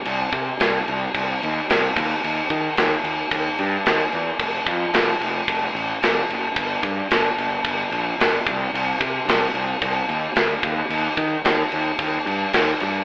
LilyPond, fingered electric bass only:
\new Staff \with { instrumentName = "Fingered electric bass" } { \clef bass \time 4/4 \key ees \lydian \tempo 4 = 110 c,8 c8 c,8 c,8 c,8 ees,8 c,8 ees,8 | ees,8 ees8 ees,8 ees,8 ees,8 g,8 ees,8 e,8 | f,,8 f,8 f,,8 f,,8 f,,8 a,,8 f,,8 fis,,8 | g,,8 g,8 g,,8 g,,8 g,,8 bes,,8 g,,8 c,8 |
c,8 c8 c,8 c,8 c,8 ees,8 d,8 ees,8 | ees,8 ees8 ees,8 ees,8 ees,8 g,8 ees,8 g,8 | }